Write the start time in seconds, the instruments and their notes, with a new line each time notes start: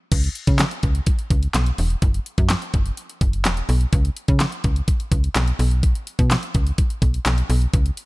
0.12 fm bass C#2, kick, closed hi-hat, crash
0.24 closed hi-hat
0.35 closed hi-hat
0.47 fm bass C#3, kick, closed hi-hat
0.59 snare, clap, closed hi-hat
0.71 closed hi-hat
0.83 fm bass C#2, kick, closed hi-hat
0.95 closed hi-hat
1.06 kick, closed hi-hat
1.19 closed hi-hat
1.30 fm bass C#2, kick, closed hi-hat
1.43 closed hi-hat
1.54 fm bass B1, snare, clap, closed hi-hat
1.66 closed hi-hat
1.78 fm bass E1, open hi-hat
1.90 closed hi-hat
2.02 fm bass F#1, kick, closed hi-hat
2.14 closed hi-hat
2.26 closed hi-hat
2.38 fm bass F#2, kick, closed hi-hat
2.50 snare, clap, closed hi-hat
2.62 closed hi-hat
2.74 fm bass F#1, kick, closed hi-hat
2.86 closed hi-hat
2.97 closed hi-hat
3.10 closed hi-hat
3.21 fm bass F#1, kick, closed hi-hat
3.33 closed hi-hat
3.45 fm bass E1, snare, clap, closed hi-hat
3.57 closed hi-hat
3.69 fm bass B1, open hi-hat
3.81 closed hi-hat
3.93 fm bass C#2, kick, closed hi-hat
4.05 closed hi-hat
4.17 closed hi-hat
4.28 fm bass C#3, kick, closed hi-hat
4.40 snare, clap, closed hi-hat
4.52 closed hi-hat
4.64 fm bass C#2, kick, closed hi-hat
4.76 closed hi-hat
4.88 kick, closed hi-hat
5.00 closed hi-hat
5.12 fm bass C#2, kick, closed hi-hat
5.24 closed hi-hat
5.36 fm bass B1, snare, clap, closed hi-hat
5.48 closed hi-hat
5.59 fm bass B1, open hi-hat
5.71 closed hi-hat
5.83 kick, closed hi-hat
5.95 closed hi-hat
6.07 closed hi-hat
6.19 fm bass B2, kick, closed hi-hat
6.31 snare, clap, closed hi-hat
6.43 closed hi-hat
6.54 fm bass C#2, kick, closed hi-hat
6.67 closed hi-hat
6.78 kick, closed hi-hat
6.90 closed hi-hat
7.02 fm bass B1, kick, closed hi-hat
7.14 closed hi-hat
7.26 fm bass B1, snare, clap, closed hi-hat
7.38 closed hi-hat
7.50 fm bass B1, open hi-hat
7.62 closed hi-hat
7.73 fm bass C#2, kick, closed hi-hat
7.86 closed hi-hat
7.97 closed hi-hat